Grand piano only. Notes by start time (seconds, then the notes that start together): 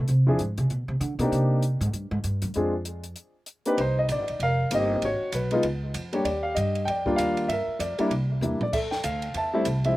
0.27 F3 C4 D4 E4 G#4
1.20 A#3 C4 D4 D#4 G4
2.55 G#3 C4 D4 F4 G#4
3.66 A#3 C4 D4 D#4 G4 B4
3.80 D#4 C5
3.99 D#5
4.12 D5
4.43 A#4 F5
4.71 A#3 C4 D#4 G4 D#5
5.05 F#4 C#5
5.34 B4
5.51 G#3 B3 D#4 F4
6.13 G3 A#3 D4 G4 C#5
6.25 G4 D5
6.43 F5
6.55 D#5
6.85 G5
6.90 D5
7.06 G3 A#3 D4 F4
7.16 F5
7.48 A#4 E5
7.80 D5
7.98 G3 A#3 D4 E4
8.42 G3 A#3 D4 E4
8.63 D5
8.73 A4 E5
8.91 G5
9.04 F5
9.37 E5 A5
9.54 G3 A3 C4 E4
9.85 F3 G#3 C4 E4 E5